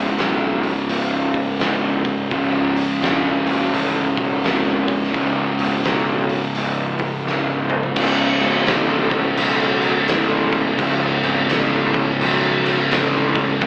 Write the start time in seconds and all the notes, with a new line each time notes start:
Already playing: C#2 G#2 C#3
0.18 B1, snare, open hi-hat
0.63 open hi-hat
0.89 C#1, open hi-hat
1.34 kick, open hi-hat
1.60 C#1, snare, open hi-hat
2.05 kick, open hi-hat
2.30 C#1 C#2 G#2 C#3, kick, open hi-hat
2.76 open hi-hat
3.02 E1, snare, open hi-hat
3.46 F#1, open hi-hat
3.73 A1, open hi-hat
4.17 B1, kick, open hi-hat
4.44 G#1, snare, open hi-hat
4.88 kick, open hi-hat
5.04 snare
5.13 C#1 C#2 G#2 C#3, kick, open hi-hat
5.59 E1, open hi-hat
5.84 B1, snare, open hi-hat
6.29 open hi-hat
6.55 C#1, open hi-hat
6.99 kick, open hi-hat
7.26 C#1, snare
7.70 mid tom
7.83 floor tom
7.95 C#1 C#2 G#2 C#3, kick, crash
8.40 G#1, crash
8.67 A1, snare, crash
9.11 kick, crash
9.37 B1, crash
9.82 crash
10.08 A1, snare, crash
10.52 kick, crash
10.77 C#1 C#2 G#2 C#3, kick, crash
11.23 G#1, crash
11.49 A1, snare, crash
11.94 kick, crash
12.21 B1, crash
12.66 crash
12.91 A1, snare, crash
13.35 kick, crash
13.61 C#1 C#2 G#2, kick, crash